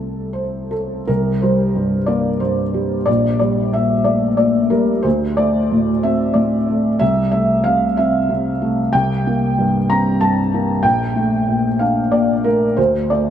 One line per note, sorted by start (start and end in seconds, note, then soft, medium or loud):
0.00 1.02 C2 soft
0.00 1.03 A3 soft
0.00 1.03 C4 soft
0.00 1.04 E4 soft
0.00 0.69 A4 medium
0.33 0.71 C5 medium
0.71 1.08 A4 medium
1.07 3.04 C2 medium
1.07 1.42 A#4 medium
1.42 1.96 G3 soft
1.42 2.09 C5 medium
1.75 2.29 G2 soft
2.06 2.61 A#3 soft
2.06 2.41 D5 medium
2.40 2.94 G2 soft
2.40 3.07 C5 medium
2.74 3.07 G3 soft
3.06 5.01 A#1 medium
3.06 3.38 D5 medium
3.39 3.93 G3 soft
3.39 3.73 D5 medium
3.73 4.26 A#2 soft
3.73 4.06 E5 medium
4.04 4.58 A3 soft
4.04 4.36 D5 medium
4.37 4.91 A#2 soft
4.37 4.71 D5 medium
4.70 5.04 G3 soft
4.70 5.04 A#4 medium
5.03 6.96 D2 medium
5.03 5.37 C5 medium
5.37 5.91 A3 soft
5.37 6.04 D5 medium
5.72 6.24 A2 soft
6.03 6.56 C4 soft
6.03 6.36 E5 medium
6.34 6.87 A2 soft
6.34 6.99 D5 medium
6.68 7.01 A3 soft
6.99 8.90 C2 medium
6.99 7.30 E5 medium
7.31 7.85 A3 soft
7.31 7.65 E5 medium
7.64 8.17 C3 soft
7.64 7.97 F5 medium
7.97 8.49 C4 soft
7.97 8.29 E5 medium
8.29 8.80 C3 soft
8.62 8.94 A3 medium
8.93 10.80 C2 medium
8.93 9.89 G5 medium
9.27 9.77 A#3 medium
9.58 10.09 G2 soft
9.90 10.41 C4 soft
9.90 10.21 A#5 medium
10.21 10.71 G2 soft
10.21 10.84 A5 medium
10.54 10.84 A#3 soft
10.83 12.74 A#1 medium
10.83 11.80 G5 medium
11.16 11.67 A3 soft
11.47 12.00 A#2 soft
11.79 12.32 D4 soft
11.79 12.12 F5 medium
12.12 12.64 A#2 soft
12.12 12.45 D5 medium
12.44 12.78 A3 soft
12.44 12.77 A#4 medium
12.77 13.30 D2 medium
12.77 13.10 C5 medium
13.10 13.30 A3 soft
13.10 13.30 D5 medium